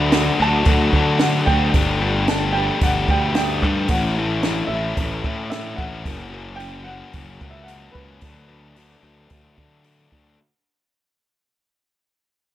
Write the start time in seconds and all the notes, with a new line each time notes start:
Already playing: D2 D3 F#3 A3 D4 F#4
0.12 D3 F#3 A3 D4 F#4, snare, open hi-hat
0.40 D2 D3 F#3 A3 D4 F#4 A5
0.65 D2 D3 F#3 A3 D4 F#4, kick, open hi-hat
0.92 D3 F#3 A3 D4 F#4, kick
1.19 D3 F#3 F#5, snare, open hi-hat
1.23 A3 D4 F#4
1.46 D2 D3 F#3 A3 F#4 G5, kick
1.50 D4
1.74 G1 G3 A3 D4 G4, kick, open hi-hat
2.02 G3 A3 D4 G4
2.28 G3 A3 D4 G4 A5, snare, open hi-hat
2.52 G3 G5
2.57 A3 D4 G4
2.81 G1 G3 A3 D4 F#5, kick, open hi-hat
2.86 G4
3.08 D2 G3 A3 D4 G4 G5, kick
3.35 G3 A3 D4 G4 G5, snare, open hi-hat
3.62 G2 G3 A3 D4 G4, kick
3.88 A1 A2 A3 F#5, kick, open hi-hat
3.93 E3 C#4 E4
4.18 A2 E3 A3 C#4 E4
4.43 A2 E3 A3 C#4 E4, snare, open hi-hat
4.67 A1 E5
4.73 A2 E3 A3 C#4 E4
4.97 A1 A2 E3 A3 C#4 E4, kick, open hi-hat
5.24 A2 E3 A3 C#4 E4, kick
5.50 A2 E3 E5, snare, open hi-hat
5.54 A3 C#4 E4
5.76 A1 A2 E3 F#5, kick
5.80 A3 C#4 E4
6.05 F#1 F#2 C#3 F#3 A#3 C#4, kick, open hi-hat
6.32 F#2 C#3 F#3 A#3 C#4
6.56 F#2 G5
6.60 C#3 F#3 A#3 C#4, open hi-hat
6.84 F#2 C#3 F#5
6.89 F#3 A#3 C#4
7.13 F#1 F#2 C#3 F#3 A#3 C#4, kick, open hi-hat
7.40 C#2 F#2 C#3 F#3 A#3 C#4, kick
7.50 E5
7.63 F#5
7.68 F#2 C#3 F#3 A#3 C#4, open hi-hat
7.91 C#2 F#2 B4, kick
7.95 C#3 F#3 A#3 C#4
8.21 D2 D3 F#3 A3 D4, kick, open hi-hat
8.49 D3 F#3 A3 D4
8.76 D3 F#3 A3 D4, open hi-hat
9.03 D2 D3 F#3 A3 D4
9.30 D2 D3 F#3 A3 D4, kick, open hi-hat
9.57 D3 F#3 A3 D4, kick
9.83 D3 F#3 A3 D4, open hi-hat
10.11 D2 D3 F#3 A3 D4, kick